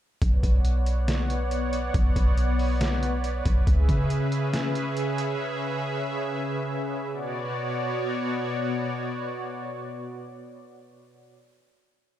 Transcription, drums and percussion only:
0.22 kick loud
0.22 closed hi-hat medium
0.43 kick medium
0.43 closed hi-hat medium
0.65 closed hi-hat medium
0.86 closed hi-hat medium
1.08 snare loud
1.08 closed hi-hat medium
1.30 closed hi-hat medium
1.51 closed hi-hat medium
1.73 closed hi-hat medium
1.94 kick loud
1.94 closed hi-hat medium
2.16 kick medium
2.16 closed hi-hat medium
2.37 closed hi-hat medium
2.59 open hi-hat soft
2.81 snare loud
2.81 closed hi-hat medium
3.03 closed hi-hat medium
3.24 closed hi-hat medium
3.45 kick loud
3.45 closed hi-hat medium
3.67 kick loud
3.67 closed hi-hat medium
3.89 kick medium
3.89 closed hi-hat medium
4.10 closed hi-hat medium
4.32 closed hi-hat medium
4.53 snare loud
4.53 closed hi-hat medium
4.75 closed hi-hat medium
4.97 closed hi-hat medium
5.18 closed hi-hat medium

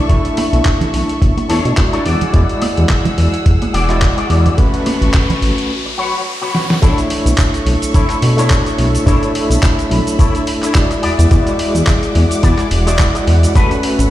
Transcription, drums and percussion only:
0.09 kick loud
0.09 closed hi-hat medium
0.25 closed hi-hat soft
0.37 open hi-hat loud
0.37 high conga medium
0.53 closed hi-hat soft
0.65 kick loud
0.65 clap loud
0.65 closed hi-hat medium
0.81 closed hi-hat soft
0.81 low conga medium
0.94 open hi-hat medium
1.09 closed hi-hat soft
1.22 kick loud
1.22 closed hi-hat medium
1.37 closed hi-hat soft
1.37 high conga medium
1.50 open hi-hat loud
1.65 closed hi-hat soft
1.77 kick loud
1.77 clap loud
1.77 closed hi-hat medium
1.93 closed hi-hat soft
2.06 open hi-hat medium
2.21 closed hi-hat soft
2.21 low conga medium
2.34 kick loud
2.34 closed hi-hat medium
2.49 closed hi-hat soft
2.62 open hi-hat loud
2.62 high conga medium
2.77 closed hi-hat soft
2.89 kick medium
2.89 clap loud
2.89 closed hi-hat medium
3.05 closed hi-hat soft
3.05 low conga medium
3.18 open hi-hat medium
3.34 closed hi-hat soft
3.46 kick loud
3.46 closed hi-hat medium
3.62 closed hi-hat soft
3.62 high conga medium
3.74 open hi-hat loud
3.90 clap soft
3.90 closed hi-hat soft
4.02 kick loud
4.02 clap loud
4.02 closed hi-hat medium
4.18 closed hi-hat soft
4.30 open hi-hat medium
4.46 closed hi-hat soft
4.46 low conga medium
4.58 kick loud
4.58 closed hi-hat medium
4.74 closed hi-hat soft
4.86 open hi-hat loud
4.86 high conga medium
5.02 closed hi-hat soft
5.14 kick loud
5.14 clap loud
5.14 closed hi-hat medium
5.30 closed hi-hat soft
5.30 low conga medium
5.42 open hi-hat medium
5.58 closed hi-hat soft
6.55 snare medium
6.70 snare medium
6.82 kick loud
6.82 closed hi-hat medium
6.82 shaker medium
6.98 closed hi-hat soft
6.98 shaker soft
7.10 open hi-hat loud
7.26 closed hi-hat soft
7.26 shaker medium
7.38 kick loud
7.38 clap loud
7.38 closed hi-hat medium
7.38 shaker medium
7.54 closed hi-hat soft
7.54 shaker soft
7.66 open hi-hat medium
7.82 closed hi-hat soft
7.82 shaker medium
7.94 kick loud
7.94 closed hi-hat medium
7.94 shaker medium
8.10 clap soft
8.10 closed hi-hat soft
8.10 shaker soft
8.22 open hi-hat loud
8.38 closed hi-hat soft
8.38 shaker medium
8.50 kick loud
8.50 clap loud
8.50 closed hi-hat medium
8.50 shaker medium
8.66 closed hi-hat soft
8.66 shaker soft
8.78 open hi-hat medium
8.95 closed hi-hat soft
8.95 shaker medium
9.07 kick loud
9.07 closed hi-hat medium
9.07 shaker medium
9.23 closed hi-hat soft
9.23 shaker soft
9.35 open hi-hat loud
9.51 closed hi-hat soft
9.51 shaker medium
9.63 kick loud
9.63 clap loud
9.63 closed hi-hat medium
9.63 shaker medium
9.79 closed hi-hat soft
9.79 shaker soft
9.91 open hi-hat medium
10.07 closed hi-hat soft
10.07 shaker medium
10.19 kick loud
10.19 closed hi-hat medium
10.19 shaker medium
10.35 closed hi-hat soft
10.35 shaker soft
10.47 open hi-hat loud
10.62 clap soft
10.62 closed hi-hat soft
10.62 shaker medium
10.75 kick loud
10.75 clap loud
10.75 closed hi-hat medium
10.75 shaker medium
10.91 closed hi-hat soft
10.91 shaker soft
11.03 open hi-hat medium
11.19 closed hi-hat soft
11.19 shaker medium
11.31 kick loud
11.31 closed hi-hat medium
11.31 shaker medium
11.47 closed hi-hat soft
11.47 shaker soft
11.59 open hi-hat loud
11.75 closed hi-hat soft
11.75 shaker medium
11.87 kick loud
11.87 clap loud
11.87 closed hi-hat medium
11.87 shaker medium
12.03 closed hi-hat soft
12.03 shaker soft
12.15 open hi-hat loud
12.31 closed hi-hat soft
12.31 shaker medium
12.43 kick loud
12.43 closed hi-hat medium
12.43 shaker medium
12.58 clap soft
12.58 closed hi-hat soft
12.58 shaker soft
12.71 open hi-hat loud
12.87 closed hi-hat soft
12.87 shaker medium
12.99 kick loud
12.99 clap loud
12.99 closed hi-hat medium
12.99 shaker medium
13.15 closed hi-hat soft
13.15 shaker soft
13.27 open hi-hat loud
13.43 closed hi-hat soft
13.43 shaker medium
13.55 kick loud
13.55 closed hi-hat medium
13.55 shaker medium
13.71 closed hi-hat soft
13.71 shaker soft
13.83 open hi-hat loud
13.99 closed hi-hat soft
13.99 shaker medium

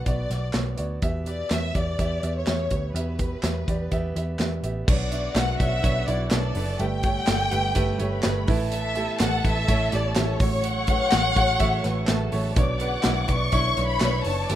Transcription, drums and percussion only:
0.06 kick medium
0.06 closed hi-hat medium
0.30 snare soft
0.30 closed hi-hat medium
0.53 snare loud
0.53 clap medium
0.53 closed hi-hat medium
0.78 closed hi-hat medium
1.02 kick medium
1.02 closed hi-hat medium
1.26 closed hi-hat medium
1.50 snare loud
1.50 clap medium
1.50 closed hi-hat medium
1.75 kick medium
1.75 closed hi-hat medium
1.99 kick medium
1.99 closed hi-hat medium
2.23 closed hi-hat medium
2.47 snare medium
2.47 clap medium
2.47 closed hi-hat medium
2.71 kick medium
2.71 closed hi-hat medium
2.96 closed hi-hat medium
3.19 kick medium
3.19 closed hi-hat medium
3.43 snare medium
3.43 clap medium
3.43 closed hi-hat loud
3.68 kick medium
3.68 closed hi-hat medium
3.92 kick medium
3.92 closed hi-hat medium
4.16 closed hi-hat medium
4.39 snare loud
4.39 clap medium
4.39 closed hi-hat medium
4.64 closed hi-hat medium
4.88 kick loud
4.88 crash loud
5.12 closed hi-hat medium
5.35 snare loud
5.35 clap medium
5.35 closed hi-hat loud
5.60 kick medium
5.60 closed hi-hat medium
5.84 kick medium
5.84 closed hi-hat medium
6.08 closed hi-hat medium
6.31 snare loud
6.31 clap medium
6.31 closed hi-hat medium
6.55 open hi-hat medium
6.79 closed hi-hat medium
7.03 kick medium
7.03 closed hi-hat medium
7.27 snare loud
7.27 clap medium
7.27 closed hi-hat loud
7.51 closed hi-hat medium
7.75 kick medium
7.75 closed hi-hat medium
7.99 closed hi-hat medium
8.23 snare loud
8.23 clap loud
8.23 closed hi-hat medium
8.47 kick medium
8.47 open hi-hat medium
8.72 closed hi-hat medium
8.95 closed hi-hat medium
9.19 snare loud
9.19 clap medium
9.19 closed hi-hat loud
9.45 kick medium
9.45 closed hi-hat medium
9.68 kick medium
9.68 closed hi-hat medium
9.92 snare soft
9.92 closed hi-hat medium
10.15 snare loud
10.15 clap medium
10.15 closed hi-hat medium
10.40 kick loud
10.40 open hi-hat medium
10.64 closed hi-hat loud
10.87 kick loud
10.87 closed hi-hat medium
11.11 snare loud
11.11 clap medium
11.11 closed hi-hat loud
11.36 kick medium
11.36 closed hi-hat medium
11.60 kick medium
11.60 closed hi-hat medium
11.84 snare soft
11.84 closed hi-hat medium
12.07 snare loud
12.07 clap medium
12.07 closed hi-hat medium
12.32 open hi-hat medium
12.56 kick loud
12.56 closed hi-hat medium
12.80 closed hi-hat medium
13.03 snare loud
13.03 clap medium
13.03 closed hi-hat loud
13.28 kick medium
13.28 closed hi-hat medium
13.52 kick medium
13.52 closed hi-hat medium
13.77 snare soft
13.77 closed hi-hat medium
14.00 snare loud
14.00 clap medium
14.00 closed hi-hat medium
14.24 open hi-hat medium
14.50 closed hi-hat loud

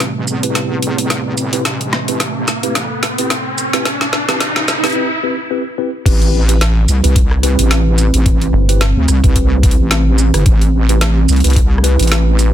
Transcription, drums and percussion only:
0.00 snare medium
0.00 closed hi-hat medium
0.28 shaker medium
0.43 closed hi-hat medium
0.55 snare medium
0.55 closed hi-hat medium
0.82 closed hi-hat medium
0.98 closed hi-hat medium
1.10 snare medium
1.10 closed hi-hat medium
1.38 closed hi-hat soft
1.38 shaker medium
1.53 closed hi-hat medium
1.65 snare medium
1.65 closed hi-hat medium
1.81 closed hi-hat soft
1.93 snare medium
2.08 closed hi-hat medium
2.20 snare medium
2.20 closed hi-hat medium
2.48 snare medium
2.48 closed hi-hat soft
2.48 shaker medium
2.63 closed hi-hat medium
2.75 snare medium
2.75 closed hi-hat medium
3.03 snare medium
3.03 closed hi-hat medium
3.18 closed hi-hat medium
3.30 snare medium
3.30 closed hi-hat medium
3.58 closed hi-hat soft
3.58 shaker medium
3.73 snare medium
3.73 closed hi-hat medium
3.85 snare medium
3.85 closed hi-hat medium
4.01 snare medium
4.01 closed hi-hat soft
4.13 snare medium
4.29 snare medium
4.29 closed hi-hat soft
4.41 snare medium
4.41 closed hi-hat medium
4.56 snare medium
4.68 snare loud
4.68 closed hi-hat soft
4.68 shaker medium
4.84 snare medium
4.84 closed hi-hat soft
4.87 closed hi-hat soft
4.90 closed hi-hat soft
4.92 closed hi-hat soft
6.06 kick loud
6.06 closed hi-hat medium
6.06 crash loud
6.22 closed hi-hat soft
6.49 closed hi-hat medium
6.61 snare loud
6.61 closed hi-hat medium
6.88 closed hi-hat soft
6.88 shaker medium
7.04 closed hi-hat medium
7.16 kick loud
7.16 closed hi-hat medium
7.31 cross-stick medium
7.43 closed hi-hat medium
7.59 closed hi-hat medium
7.71 snare loud
7.71 closed hi-hat medium
7.98 closed hi-hat soft
7.98 shaker medium
8.14 closed hi-hat medium
8.26 kick loud
8.26 closed hi-hat medium
8.42 closed hi-hat soft
8.69 closed hi-hat medium
8.81 snare loud
8.81 closed hi-hat medium
9.08 cross-stick soft
9.08 closed hi-hat soft
9.08 shaker medium
9.24 kick loud
9.24 closed hi-hat medium
9.36 kick medium
9.36 closed hi-hat medium
9.63 kick loud
9.63 closed hi-hat medium
9.71 closed hi-hat medium
9.91 snare loud
9.91 closed hi-hat medium
10.18 shaker medium
10.34 cross-stick medium
10.34 closed hi-hat medium
10.46 kick loud
10.46 closed hi-hat medium
10.62 closed hi-hat soft
10.89 closed hi-hat medium
11.01 snare loud
11.01 closed hi-hat medium
11.29 closed hi-hat soft
11.29 shaker medium
11.33 closed hi-hat soft
11.36 closed hi-hat soft
11.40 closed hi-hat soft
11.44 closed hi-hat soft
11.47 closed hi-hat soft
11.50 closed hi-hat soft
11.53 kick loud
11.53 closed hi-hat soft
11.56 closed hi-hat medium
11.78 cross-stick soft
11.84 closed hi-hat medium
11.99 closed hi-hat medium
12.03 closed hi-hat soft
12.07 closed hi-hat soft
12.12 snare loud
12.12 closed hi-hat medium
12.39 closed hi-hat soft
12.39 shaker medium

